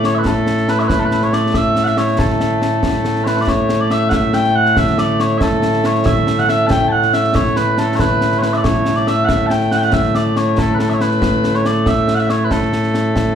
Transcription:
0.00 13.35 A2 medium
0.00 13.35 A3 medium
0.00 snare medium
0.05 0.15 C#5 medium
0.15 0.26 B4 medium
0.15 0.18 E5 medium
0.25 0.69 A4 medium
0.25 concert bass drum soft
0.25 snare medium
0.47 snare medium
0.58 snare soft
0.68 0.79 B4 medium
0.68 snare medium
0.79 0.88 C#5 medium
0.79 0.83 E5 medium
0.79 snare soft
0.88 0.99 B4 medium
0.88 concert bass drum medium
0.88 snare medium
0.99 1.05 A4 medium
1.05 1.23 B4 medium
1.11 snare medium
1.22 1.33 C#5 medium
1.22 snare soft
1.33 1.55 D5 medium
1.33 snare medium
1.54 1.84 E5 medium
1.54 concert bass drum medium
1.54 snare medium
1.76 snare medium
1.84 1.98 E5 medium
1.84 1.87 F#5 medium
1.84 snare soft
1.97 2.19 C#5 medium
1.97 snare medium
2.08 snare soft
2.19 3.24 A4 medium
2.19 concert bass drum medium
2.19 snare loud
2.30 snare soft
2.40 snare medium
2.62 snare medium
2.83 concert bass drum medium
2.83 snare loud
3.05 snare medium
3.16 snare soft
3.24 3.41 B4 medium
3.24 3.27 C#5 medium
3.24 snare medium
3.37 snare soft
3.41 3.49 D5 medium
3.47 3.81 C#5 medium
3.47 concert bass drum medium
3.47 snare loud
3.69 snare medium
3.81 3.91 D5 medium
3.90 4.09 E5 loud
3.90 snare medium
4.09 4.34 E5 loud
4.09 4.13 F#5 loud
4.09 concert bass drum medium
4.09 snare loud
4.33 4.56 G5 loud
4.33 snare medium
4.44 snare soft
4.56 4.78 F#5 loud
4.66 snare soft
4.77 4.99 E5 loud
4.77 concert bass drum medium
4.77 snare loud
4.87 snare soft
4.98 5.20 D5 loud
4.98 snare medium
5.20 5.38 C#5 loud
5.20 snare medium
5.38 5.42 E5 medium
5.38 concert bass drum medium
5.38 snare loud
5.42 5.86 A4 medium
5.62 snare medium
5.73 snare soft
5.84 6.06 C#5 loud
5.84 snare medium
5.95 snare soft
6.06 6.39 E5 medium
6.06 concert bass drum medium
6.06 snare loud
6.27 snare medium
6.38 6.49 F#5 medium
6.38 snare soft
6.49 6.67 E5 loud
6.49 snare medium
6.67 6.88 G5 loud
6.67 6.70 A5 loud
6.67 concert bass drum medium
6.67 snare loud
6.88 7.14 F#5 medium
6.88 6.92 A5 medium
7.03 snare soft
7.13 7.35 E5 loud
7.13 snare medium
7.24 snare soft
7.35 7.56 C#5 loud
7.35 concert bass drum medium
7.35 snare loud
7.46 snare soft
7.56 7.78 B4 medium
7.56 snare medium
7.78 7.95 A4 medium
7.78 snare medium
7.95 8.00 C#5 medium
7.95 concert bass drum medium
7.95 snare loud
8.00 8.38 B4 medium
8.21 snare medium
8.32 snare soft
8.38 8.53 B4 medium
8.38 8.42 C#5 medium
8.43 snare medium
8.53 8.64 D5 medium
8.53 8.57 E5 medium
8.53 snare soft
8.64 8.96 C#5 medium
8.64 concert bass drum medium
8.64 snare loud
8.85 snare medium
8.96 9.08 D5 medium
8.96 snare soft
9.07 9.24 E5 medium
9.07 snare medium
9.24 9.29 F#5 medium
9.29 9.47 E5 medium
9.29 concert bass drum medium
9.29 snare loud
9.47 9.72 G5 medium
9.47 9.50 A5 medium
9.47 snare medium
9.61 snare soft
9.71 9.77 F#5 loud
9.71 snare medium
9.77 9.83 G5 medium
9.82 9.93 F#5 medium
9.82 snare soft
9.93 10.15 E5 medium
9.93 concert bass drum medium
9.93 snare loud
10.04 snare soft
10.15 10.37 D5 medium
10.15 snare medium
10.36 10.59 C#5 medium
10.36 snare medium
10.58 10.74 A4 medium
10.58 concert bass drum medium
10.58 snare loud
10.74 10.79 B4 medium
10.79 10.90 A4 medium
10.79 snare medium
10.90 10.94 E5 medium
10.90 snare soft
10.94 11.01 C#5 medium
11.01 11.55 B4 medium
11.01 snare medium
11.12 snare soft
11.22 concert bass drum medium
11.22 snare loud
11.44 snare medium
11.54 11.66 C#5 medium
11.54 snare soft
11.65 11.87 D5 medium
11.65 snare medium
11.86 12.15 E5 medium
11.86 concert bass drum medium
11.86 snare medium
12.08 snare medium
12.15 12.19 F#5 medium
12.19 12.30 E5 medium
12.19 snare soft
12.29 12.44 C#5 medium
12.29 snare medium
12.44 12.51 B4 medium
12.51 13.35 A4 medium
12.51 concert bass drum medium
12.51 snare medium
12.62 snare soft
12.73 snare medium
12.83 snare soft
12.94 snare medium
13.16 concert bass drum medium
13.16 snare medium

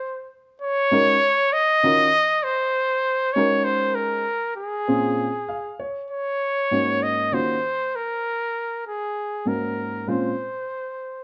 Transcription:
0.00 0.32 C5 medium
0.62 1.54 C#5 loud
0.91 1.14 G#3 medium
0.91 1.14 C#4 medium
0.91 1.14 D#4 medium
0.91 1.14 F#4 medium
0.91 1.14 A#4 medium
1.53 2.45 D#5 loud
1.83 2.05 D#3 medium
1.83 2.05 C#4 medium
1.83 2.06 F4 soft
1.83 2.06 F#4 medium
1.83 2.06 A#4 medium
2.44 3.35 C5 medium
3.33 4.22 G#3 medium
3.33 4.21 C#4 medium
3.33 4.22 D#4 medium
3.33 4.22 F#4 medium
3.33 4.22 A#4 medium
3.33 3.66 C#5 loud
3.65 3.97 C5 medium
3.95 4.56 A#4 medium
4.57 5.75 G#4 medium
4.88 5.25 A#2 medium
4.88 5.25 C4 medium
4.88 5.25 C#4 medium
4.88 5.25 F4 medium
4.88 5.25 G#4 medium
5.48 5.77 F5 medium
5.79 6.08 C#5 medium
6.11 7.04 C#5 medium
6.71 7.33 G#2 medium
6.71 7.31 A#3 medium
6.71 7.31 C#4 medium
6.71 7.33 D#4 medium
6.71 7.32 F#4 medium
7.03 7.35 D#5 loud
7.32 7.54 D#3 medium
7.32 7.54 A#3 medium
7.32 7.54 C#4 soft
7.32 7.54 F4 soft
7.32 7.54 F#4 medium
7.32 7.97 C5 medium
7.96 8.86 A#4 medium
8.87 9.49 G#4 medium
9.45 10.07 G#2 medium
9.45 10.07 A#3 soft
9.45 10.06 C#4 soft
9.45 10.07 D#4 soft
9.45 10.08 F#4 medium
9.45 10.11 A#4 medium
10.07 10.29 A#2 medium
10.07 10.29 G#3 medium
10.07 10.29 C4 soft
10.07 10.29 C#4 medium
10.07 10.29 F4 medium
10.07 11.24 C5 medium

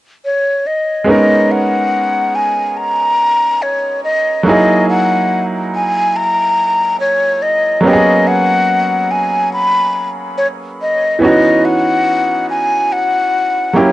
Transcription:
0.25 0.68 C#5 medium
0.67 1.08 D#5 medium
1.04 4.40 G#3 medium
1.04 4.41 B3 medium
1.04 4.41 C#4 medium
1.09 4.42 D#4 medium
1.09 4.43 A#4 medium
1.09 1.53 D#5 medium
1.51 2.37 F#5 loud
2.35 2.79 G#5 medium
2.77 3.64 A#5 loud
3.62 4.03 C#5 medium
4.04 4.43 D#5 medium
4.43 7.78 F#3 medium
4.43 7.79 A#3 medium
4.43 7.80 D#4 medium
4.43 4.86 D#5 medium
4.48 7.80 E4 medium
4.48 7.81 G#4 medium
4.90 5.45 F#5 medium
5.74 6.18 G#5 medium
6.16 7.00 A#5 loud
7.00 7.44 C#5 loud
7.42 7.84 D#5 medium
7.81 11.16 F#3 medium
7.81 11.17 A#3 medium
7.81 11.18 B3 medium
7.85 11.18 C#4 medium
7.85 7.93 G4 medium
7.85 8.29 D#5 loud
7.93 11.22 G#4 medium
8.27 9.12 F#5 loud
9.11 9.52 G#5 medium
9.53 10.09 B5 loud
10.38 10.47 C#5 medium
10.81 11.20 D#5 medium
11.19 13.70 E3 medium
11.19 13.71 B3 medium
11.19 13.71 C#4 medium
11.23 13.72 D#4 medium
11.23 13.73 F#4 medium
11.23 11.67 D#5 loud
11.65 12.49 F#5 loud
12.50 12.94 G#5 medium
12.92 13.79 F#5 loud
13.73 13.92 F#3 medium
13.73 13.92 A#3 medium
13.73 13.92 C#4 medium
13.73 13.92 E4 medium
13.73 13.92 G4 medium
13.78 13.92 C#5 medium

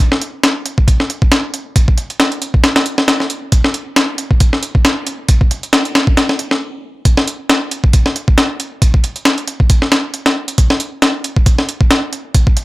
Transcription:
0.12 snare medium
0.22 closed hi-hat medium
0.43 snare loud
0.43 closed hi-hat medium
0.66 closed hi-hat medium
0.78 kick medium
0.88 kick loud
0.88 closed hi-hat medium
1.00 snare soft
1.10 closed hi-hat medium
1.22 kick medium
1.32 snare loud
1.32 closed hi-hat medium
1.54 closed hi-hat medium
1.76 kick loud
1.76 closed hi-hat medium
1.88 kick medium
1.98 closed hi-hat medium
2.10 closed hi-hat soft
2.20 snare loud
2.20 closed hi-hat medium
2.32 closed hi-hat soft
2.42 closed hi-hat medium
2.54 kick loud
2.64 snare loud
2.64 closed hi-hat medium
2.76 snare loud
2.76 closed hi-hat medium
2.86 closed hi-hat medium
2.98 snare medium
3.08 snare loud
3.08 closed hi-hat medium
3.20 snare soft
3.30 closed hi-hat medium
3.52 kick loud
3.52 closed hi-hat medium
3.64 snare medium
3.74 closed hi-hat medium
3.96 snare loud
3.96 closed hi-hat medium
4.18 closed hi-hat medium
4.31 kick loud
4.40 kick loud
4.40 closed hi-hat medium
4.53 snare soft
4.63 closed hi-hat medium
4.75 kick loud
4.85 snare loud
4.85 closed hi-hat medium
5.07 closed hi-hat medium
5.29 kick loud
5.29 closed hi-hat medium
5.41 kick medium
5.51 closed hi-hat medium
5.63 closed hi-hat soft
5.73 snare loud
5.73 closed hi-hat medium
5.85 closed hi-hat soft
5.95 snare loud
5.95 closed hi-hat medium
6.07 kick medium
6.17 snare loud
6.17 closed hi-hat medium
6.29 snare soft
6.39 closed hi-hat medium
6.51 snare medium
7.05 kick loud
7.05 closed hi-hat medium
7.17 snare medium
7.28 closed hi-hat medium
7.50 snare loud
7.50 closed hi-hat medium
7.71 closed hi-hat medium
7.84 kick loud
7.93 kick loud
7.93 closed hi-hat medium
8.06 snare soft
8.16 closed hi-hat medium
8.28 kick loud
8.38 snare loud
8.38 closed hi-hat medium
8.60 closed hi-hat medium
8.82 kick loud
8.82 closed hi-hat medium
8.94 kick medium
9.04 closed hi-hat medium
9.16 closed hi-hat soft
9.25 snare loud
9.25 closed hi-hat medium
9.38 closed hi-hat soft
9.48 closed hi-hat medium
9.60 kick loud
9.70 kick loud
9.70 closed hi-hat medium
9.82 snare soft
9.92 snare loud
9.92 closed hi-hat medium
10.14 closed hi-hat medium
10.26 snare loud
10.26 closed hi-hat medium
10.48 closed hi-hat medium
10.58 kick loud
10.58 closed hi-hat loud
10.70 snare medium
10.80 closed hi-hat medium
11.02 snare loud
11.02 closed hi-hat medium
11.24 closed hi-hat medium
11.36 kick loud
11.46 kick loud
11.46 closed hi-hat medium
11.59 snare soft
11.69 closed hi-hat medium
11.81 kick loud
11.91 snare loud
11.91 closed hi-hat medium
12.13 closed hi-hat medium
12.35 kick loud
12.35 closed hi-hat medium
12.47 kick loud
12.57 closed hi-hat medium

